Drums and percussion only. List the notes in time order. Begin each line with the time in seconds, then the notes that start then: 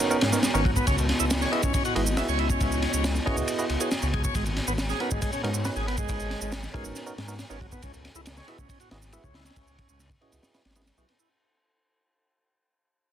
0.00 snare, ride
0.11 shaker
0.21 snare, ride
0.32 snare, shaker
0.43 snare, ride, shaker
0.55 shaker
0.65 kick, ride
0.76 kick, shaker
0.87 kick, ride, shaker
0.98 ride, shaker
1.09 snare, ride
1.20 shaker
1.31 snare, ride, shaker
1.41 snare, shaker
1.53 ride
1.63 kick, shaker
1.74 kick, ride, shaker
1.85 ride, shaker
1.96 ride
2.07 shaker
2.17 snare, ride, shaker
2.28 shaker
2.39 ride
2.50 kick, shaker
2.61 kick, ride, shaker
2.72 shaker
2.82 snare, ride
2.94 shaker
3.04 snare, ride, shaker
3.15 snare, shaker
3.27 kick, ride
3.37 shaker
3.48 ride, shaker
3.59 shaker
3.69 ride
3.80 ride, shaker
3.91 snare, ride, shaker
4.02 shaker
4.14 kick, ride
4.24 kick, shaker
4.35 kick, ride, shaker
4.46 ride, shaker
4.57 snare, ride
4.68 shaker
4.78 snare, ride, shaker
4.89 snare, shaker
5.00 ride
5.11 kick, shaker
5.22 kick, ride, shaker
5.33 ride, shaker
5.44 ride
5.54 shaker
5.65 snare, ride, shaker
5.76 shaker
5.88 ride
5.98 kick, shaker
6.09 kick, ride, shaker
6.20 shaker
6.31 snare, ride
6.42 shaker
6.52 snare, ride, shaker
6.63 snare, shaker
6.74 kick, ride
6.85 shaker
6.96 snare, ride, shaker
7.07 shaker
7.18 snare, ride
7.28 snare, shaker
7.39 snare, ride, shaker
7.50 shaker
7.61 kick, ride
7.72 kick, shaker
7.82 kick, ride, shaker
7.94 ride, shaker
8.05 snare, ride
8.15 shaker
8.26 snare, ride, shaker
8.37 snare, shaker
8.48 ride
8.58 kick, shaker
8.69 kick, ride, shaker
8.80 ride, shaker
8.91 snare, ride
9.02 snare, shaker
9.12 ride, shaker
9.24 kick, shaker
9.34 snare, ride
9.39 snare, ride
9.45 snare, ride, shaker
9.50 snare, ride
9.56 kick, ride, shaker
9.67 shaker
9.79 kick, ride
9.89 ride, shaker
10.00 snare, ride, shaker
10.10 kick, ride, shaker
10.21 ride
10.32 snare, ride, shaker
10.43 snare, ride, shaker
10.54 snare, ride, shaker
10.65 snare, ride
10.71 snare, ride
10.75 snare, ride, shaker
10.81 snare, ride
10.86 snare, ride, shaker
10.98 shaker
11.09 snare, ride
11.19 shaker